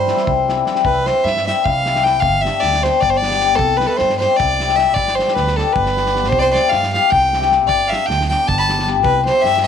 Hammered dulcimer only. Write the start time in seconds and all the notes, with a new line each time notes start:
0.08 E3 G3 C4 E4
0.48 E3 G3 C4 E4
0.65 E3 G3 C4 E4
1.05 E3 G3 C4 E4
1.44 E3 G3 C4 E4
1.85 E3 G3 C4 E4
2.04 E3 G3 C4 E4
2.44 G3 B3 D4 G4
2.84 G3 B3 D4 G4
3.25 G3 B3 D4 G4
3.42 G3 B3 D4 G4
3.80 G3 C4 E4 G4
4.22 G3 C4 E4 G4
4.59 G3 C4 E4 G4
4.78 G3 C4 E4 G4
5.19 G3 B3 D4 G4
5.57 G3 B3 D4 G4
5.96 G3 B3 D4 G4
6.13 G3 B3 D4 G4
6.53 G3 C4 E4 G4
6.92 G3 C4 E4 G4
7.33 G3 C4 E4 G4
7.51 G3 C4 E4 G4
7.90 G3 B3 D4 G4
8.30 G3 B3 D4 G4
8.69 G3 B3 D4 G4
8.88 G3 B3 D4 G4
9.27 G3 C4 E4 G4